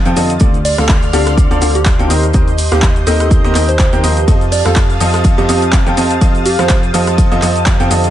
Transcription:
Already playing: G4 F5 D#6 A6
0.05 F2 F3 C4 F4 A4 G5, closed hi-hat, shaker
0.16 F2 D3 C4 F4 A4 D#5, open hi-hat, shaker
0.30 closed hi-hat, shaker
0.40 D2 D3 C4 F4 A4 D5 C6 F6, kick, closed hi-hat, shaker
0.54 closed hi-hat, shaker
0.65 D5 F5, open hi-hat, shaker
0.78 D2 D3 C4 F4 A4 F5, cross-stick, snare, closed hi-hat, shaker
0.89 kick, snare, clap, closed hi-hat, shaker
1.03 C5, closed hi-hat, shaker
1.13 D2 D3 C4 F4 G4 A4 D5, open hi-hat, shaker
1.17 A5
1.26 cross-stick, snare, closed hi-hat, shaker
1.38 kick, closed hi-hat, shaker
1.51 D2 D3 C4 F4 A4 D5, closed hi-hat, shaker
1.61 D2 D3 C4 F4 A4 D5, open hi-hat, shaker
1.75 G4, closed hi-hat, shaker
1.85 kick, snare, clap, closed hi-hat, shaker
1.99 D2 D#3 C4 F4 A4 G5, closed hi-hat, shaker
2.10 D#2 D#3 C4 G4 A#4 D#5 G6, open hi-hat, shaker
2.23 closed hi-hat, shaker
2.34 D#2 D#3 C4 G4 A#4 D#5, kick, closed hi-hat, shaker
2.48 closed hi-hat, shaker
2.58 open hi-hat, shaker
2.71 D#2 D#3 C4 G4 A#4 F5, cross-stick, snare, closed hi-hat, shaker
2.82 kick, snare, clap, closed hi-hat, shaker
2.96 closed hi-hat, shaker
3.07 D#2 D#3 C4 G4 A4 A#4 D#5, open hi-hat, shaker
3.20 A4, cross-stick, closed hi-hat, shaker
3.31 kick, closed hi-hat, shaker
3.44 D#2 D#3 C4 G4 A#4 D#5, closed hi-hat, shaker
3.55 D#2 D#3 C4 G4 A#4 D#5, clap, open hi-hat, shaker
3.69 C5, closed hi-hat, shaker
3.79 kick, snare, clap, closed hi-hat, shaker
3.93 D#2 D#3 C4 G4 A#4 G5, closed hi-hat, shaker
4.04 D#2 F3 C4 G4 A#4 D#5, open hi-hat, shaker
4.17 closed hi-hat, shaker
4.28 F2 F3 C4 F4 A4 D#5 F5 D#6 A6, kick, closed hi-hat, ride, shaker
4.41 closed hi-hat, shaker
4.52 D5, open hi-hat, shaker
4.65 F2 F3 C4 F4 A4 F5, cross-stick, snare, closed hi-hat, shaker
4.76 kick, snare, clap, closed hi-hat, ride, shaker
4.90 closed hi-hat, shaker
5.00 F2 F3 C4 F4 A4 D#5, open hi-hat, shaker
5.14 cross-stick, snare, closed hi-hat, shaker
5.24 kick, closed hi-hat, ride, shaker
5.38 F2 F3 C4 F4 G4 A4 D#5, closed hi-hat, shaker
5.49 F2 F3 C4 F4 A4 D#5, open hi-hat, shaker
5.62 closed hi-hat, shaker
5.72 kick, snare, clap, closed hi-hat, ride, shaker
5.86 F2 F3 C4 F4 A4 G5, closed hi-hat, shaker
5.97 F2 F3 C4 F4 A4 D#5, open hi-hat, shaker
6.11 closed hi-hat, shaker
6.21 F2 F3 C4 F4 A4 D#5, kick, closed hi-hat, ride, shaker
6.35 closed hi-hat, shaker
6.45 G4, open hi-hat, shaker
6.59 F2 F3 C4 F4 A4 C5 F5, cross-stick, snare, closed hi-hat, shaker
6.69 kick, snare, clap, closed hi-hat, ride, shaker
6.83 closed hi-hat, shaker
6.94 F2 F3 C4 F4 A4 D#5, open hi-hat, shaker
7.07 cross-stick, closed hi-hat, shaker
7.18 kick, closed hi-hat, ride, shaker
7.32 F2 F3 C4 F4 A4 D#5, closed hi-hat, shaker
7.42 F2 F3 C4 F4 A4 D#5, clap, open hi-hat, shaker
7.56 closed hi-hat, shaker
7.66 kick, snare, clap, closed hi-hat, ride, shaker
7.80 F2 F3 C4 F4 A4 G5, closed hi-hat, shaker
7.91 F2 D3 C4 F4 A4 D#5, open hi-hat, shaker
8.04 closed hi-hat, shaker

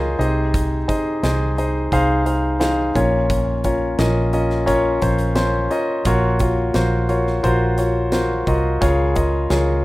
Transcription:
Already playing: C#2 F4 G#4 A#4 C5 C#5 D#5
0.19 C2 C3 D#4 G#4 C5 D#5, closed hi-hat
0.54 kick, closed hi-hat
0.88 D#4 G#4 C5 D#5, kick, closed hi-hat
1.23 C2 D#4 G#4 C5 D#5, snare, closed hi-hat
1.58 D#4 G#4 C5 D#5, closed hi-hat
1.92 C2 D#4 G#4 C5 F5, kick, closed hi-hat
2.26 D#4 G#4 C5 F5, closed hi-hat
2.60 D#4 G#4 C5 F5, snare, closed hi-hat
2.95 A#1 A#2 C#4 F4 A#4 C#5, kick, closed hi-hat
3.30 kick, closed hi-hat
3.64 C#4 F4 A#4 C#5, kick, closed hi-hat
3.99 A#1 C#4 F4 A#4 D#5, snare, closed hi-hat
4.33 C#4 F4 A#4 D#5, closed hi-hat
4.50 snare
4.66 C#4 F4 A#4 C#5, kick, closed hi-hat
5.02 A#1 C#4 F4 A#4 C5, kick, closed hi-hat
5.18 closed hi-hat
5.35 C#4 F4 A#4 C5, snare, closed hi-hat
5.70 C#4 F4 A#4 D#5, closed hi-hat
6.05 A#1 A#2 F4 F#4 A#4 C#5, kick, closed hi-hat
6.39 F4 F#4 A#4 C#5, kick, closed hi-hat
6.74 A#1 F4 F#4 A#4 C5, snare, closed hi-hat
7.09 F4 F#4 A#4 C#5, closed hi-hat
7.27 snare
7.43 A#1 F4 F#4 A#4 C5, kick, closed hi-hat
7.78 F4 F#4 A#4 C#5, closed hi-hat
8.12 F4 F#4 A#4 C5, snare, closed hi-hat
8.47 C2 F4 F#4 A#4 D#5, kick, closed hi-hat
8.81 C#2 C#3 F4 G#4 A#4 C#5, kick, closed hi-hat
9.15 F4 G#4 A#4 D#5, kick, closed hi-hat
9.50 C#2 F4 G#4 A#4 C#5, snare, closed hi-hat

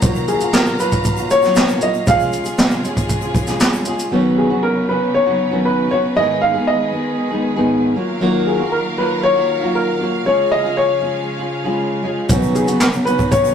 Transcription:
Already playing: A#2 D#3 F#3 F5 A#5
0.02 D#3 F#3 A#3 F4 F#4, kick, shaker
0.15 shaker
0.28 G#4, shaker
0.40 A#3 F4 F#4, shaker
0.53 A#4, snare, shaker
0.66 shaker
0.78 F#3 F4 F#4 B4, shaker
0.91 kick, shaker
1.04 kick, shaker
1.17 A#3 F4 F#4, shaker
1.30 C#5, shaker
1.42 D#3 F#3 A#3 F4 F#4, snare, shaker
1.55 snare, shaker
1.68 shaker
1.80 F#3 A#3 F4 F#4 D#5, shaker
1.94 shaker
2.06 C#3 F3 G#3 C#4 F4 G#4 F5, kick, shaker
2.20 shaker
2.32 shaker
2.44 C#4 F4 G#4, shaker
2.58 snare, shaker
2.70 shaker
2.83 G#3 C#4 F4 G#4, shaker
2.97 kick, shaker
3.09 kick, shaker
3.21 F4 G#4, shaker
3.25 C#4
3.35 kick, shaker
3.47 C#3 G#3 C#4 F4 G#4, snare, shaker
3.60 snare, shaker
3.73 shaker
3.85 G#3 C#4 F4 G#4, shaker
3.99 shaker
4.11 B2 C#3 D#3 F#3 B3 C#4 D#4 F#4 B4
4.38 G#4
4.50 F#3 B3 C#4 F#4
4.63 A#4
4.88 F#3 B3 C#4 F#4 B4
5.14 C#5
5.26 F#3 B3 C#4 F#4
5.51 B2 D#3 F#3 B3 C#4 F#4
5.65 B4
5.90 F#3 B3 C#4 F#4 C#5
6.15 G#2 D#3 G#3 B3 D#4 G#4 D#5
6.41 F5
6.54 G#3 B3 D#4 G#4
6.67 D#5
6.92 G#3 B3 D#4 G#4
7.30 G#3 B3 D#4 G#4
7.56 G#2 D#3 G#3 B3 D#4 G#4
7.94 D#3 F#3 A#3 F4 F#4 A#4 F5
8.20 D#3 F#3 A#3 F4 F#4
8.47 G#4
8.58 A#3 F4 F#4
8.72 A#4
8.96 F#3 A#3 F4 F#4 B4
9.23 C#5
9.35 A#3 F4 F#4
9.61 D#3 F#3 A#3 F4 F#4
9.75 A#4
9.98 F#3 A#3 F4 F#4
10.24 C#3 F3 G#3 C#4 F4 G#4 C#5
10.52 D#5
10.63 C#4 F4 G#4
10.77 C#5
11.01 G#3 C#4 F4 G#4
11.39 C#4 F4 G#4
11.64 C#3 G#3 C#4 F4 G#4
12.03 G#3 C#4 F4 G#4
12.29 B2 D#3 F#3 B3 C#4 D#4 F#4 B4, kick, shaker
12.42 shaker
12.55 G#4, shaker
12.67 F#3 B3 C#4 F#4, shaker
12.80 A#4, snare, shaker
12.93 shaker
13.05 F#3 B3 C#4 F#4 B4, shaker
13.19 kick, shaker
13.31 C#5, kick, shaker
13.43 F#3 B3 C#4 F#4, shaker

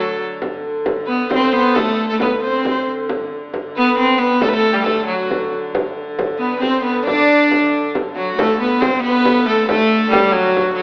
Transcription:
Already playing: D3 F#3
0.01 A4
0.19 frame drum
0.42 frame drum
0.86 frame drum
1.06 B3 B4
1.29 C5, frame drum
1.34 C4 B4
1.42 C5
1.53 B3, frame drum
1.74 A4, frame drum
1.78 A3
2.09 A3 A4
2.19 B3 B4, frame drum
2.42 C4 C5
2.65 frame drum
2.70 C5
3.09 D3, frame drum
3.54 frame drum
3.76 B3 B4
3.98 C4
4.18 B3 B4, frame drum
4.41 A3 A4, frame drum
4.49 B4
4.54 A4
4.73 G3 G4
4.84 A3 A4, frame drum
5.05 F#3 F#4
5.30 frame drum
5.52 frame drum
5.75 frame drum
6.19 frame drum
6.38 B3 B4
6.60 C4 C5, frame drum
6.83 B3 B4, frame drum
7.05 D4 D5, frame drum
7.29 frame drum
7.51 frame drum
7.95 frame drum
8.15 F#3 F#4, frame drum
8.36 D3 A3 A4, frame drum
8.61 B3 B4
8.80 C4 C5, frame drum
9.03 B3 B4
9.25 frame drum
9.46 A3 A4, frame drum
9.67 A3 A4, frame drum
10.10 G3 G4, frame drum
10.28 F#3 G4
10.35 F#4
10.57 frame drum
10.74 F#3 F#4
10.78 frame drum

